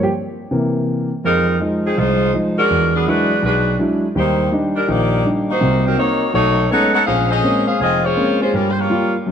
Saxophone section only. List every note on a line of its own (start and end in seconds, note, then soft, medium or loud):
1.25 1.59 G#3 medium
1.25 1.59 D#4 medium
1.25 1.59 F4 medium
1.25 1.59 A#4 loud
1.86 1.97 F3 medium
1.86 1.97 C4 medium
1.86 1.97 D#4 medium
1.86 1.97 G#4 medium
1.98 2.34 G#3 medium
1.98 2.34 D#4 loud
1.98 2.34 F4 loud
1.98 2.34 C5 loud
2.58 2.91 G#3 loud
2.58 2.91 D4 loud
2.58 2.92 F#4 loud
2.58 2.91 A#4 loud
2.95 3.07 F#3 medium
2.95 3.07 B3 medium
2.95 3.07 D4 medium
2.95 3.07 G#4 medium
3.08 3.43 G#3 medium
3.08 3.43 D4 medium
3.08 3.43 F#4 medium
3.08 3.43 B4 loud
3.44 3.78 G#3 medium
3.44 3.77 D4 medium
3.44 3.77 F#4 medium
3.44 3.77 B4 medium
4.18 4.51 A#3 medium
4.18 4.51 D#4 medium
4.18 4.50 G4 medium
4.18 4.51 C5 medium
4.75 4.88 G3 medium
4.75 4.87 D4 medium
4.75 4.87 D#4 medium
4.75 4.87 A#4 medium
4.90 5.25 A#3 medium
4.90 5.25 D#4 medium
4.90 5.26 G4 medium
4.90 5.25 D5 loud
5.50 5.83 A#3 medium
5.50 5.83 D#4 medium
5.50 5.83 F#4 medium
5.50 5.83 C5 loud
5.86 5.98 F#3 medium
5.86 5.98 C4 medium
5.86 5.97 D#4 medium
5.86 5.98 A#4 medium
5.98 6.32 A#3 medium
5.98 6.32 D#4 medium
5.98 6.31 F#4 medium
5.98 6.31 C#5 medium
6.34 6.68 A3 medium
6.34 6.68 D#4 medium
6.34 6.68 F#4 medium
6.34 6.68 C#5 loud
6.71 6.93 D#4 medium
6.71 6.93 A4 medium
6.71 6.93 C#5 medium
6.71 6.93 F#5 loud
6.94 7.06 D#4 medium
6.94 7.06 A4 medium
6.94 7.06 C#5 loud
6.94 7.06 F#5 loud
7.06 7.28 C#4 medium
7.06 7.29 G#4 medium
7.06 7.28 C5 medium
7.06 7.28 F5 loud
7.30 7.65 C#4 loud
7.30 7.64 G#4 medium
7.30 7.64 C5 medium
7.30 7.64 D#5 loud
7.67 7.79 C#4 medium
7.67 7.79 G#4 medium
7.67 7.79 C5 medium
7.67 7.79 F5 medium
7.81 8.03 C4 medium
7.81 8.03 F4 medium
7.81 8.02 G#4 medium
7.81 8.03 D#5 loud
8.04 8.40 G#3 medium
8.04 8.40 F4 medium
8.04 8.40 C5 medium
8.04 8.40 C#5 loud
8.42 8.53 G#3 medium
8.42 8.53 C#4 medium
8.42 8.53 F4 medium
8.42 8.53 C5 loud
8.55 8.68 G3 medium
8.55 8.68 C#4 medium
8.55 8.68 F4 medium
8.55 8.68 A#4 medium
8.70 8.78 C5 medium
8.79 9.14 A#3 medium
8.79 9.14 F4 medium
8.79 9.14 G4 medium
8.79 9.14 C#5 medium